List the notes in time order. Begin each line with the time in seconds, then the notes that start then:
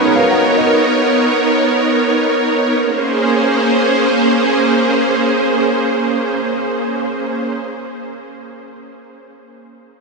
Already playing: F#3 B3 C#4 D#4 F#4 A#4 B4 C#5
0.04 G#4 C#5
0.15 B4 F5
0.31 C#5 F#5
0.57 A#4 D#5
2.78 A#3 C#4 G#4 C5